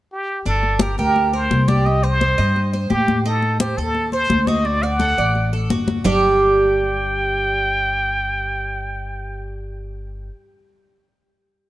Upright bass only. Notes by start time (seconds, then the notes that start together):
0.46 G1
0.99 D2
1.51 C2
2.39 G2
2.91 A2
3.77 D#2
4.30 D2
5.18 A1
5.70 G1
6.05 G1